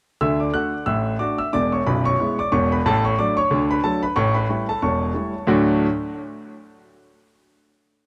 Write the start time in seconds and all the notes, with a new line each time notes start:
0.21 D2 D3 E5 E6
0.40 D5 D6
0.54 A3 D4 F#4 F#5 F#6
0.86 A1 A2 E5 E6
1.19 A3 D4 F#4 D5 D6
1.38 E5 E6
1.53 E1 E2 D5 D6
1.72 C#5 C#6
1.87 B0 B1 B4 B5
2.05 C#5 C#6
2.20 G#3 B3 E4
2.39 D5 D6
2.52 E1 E2 C#5 C#6
2.72 B4 B5
2.86 A1 A2 A4 A5
3.05 C#5 C#6
3.19 F#3 A3 D4 D5 D6
3.37 C#5 C#6
3.50 D2 D3
3.71 B4 B5
3.84 F#3 A3 D4 A4 A5
4.03 B4 B5
4.16 A1 A2 C#5 C#6
4.34 B4 B5
4.49 G3 A3 E4
4.69 A4 A5
4.82 E1 E2 C#5 A5 C#6
5.14 G3 A3 E4
5.47 D2 A2 F#3 A3 D4 F#4 D6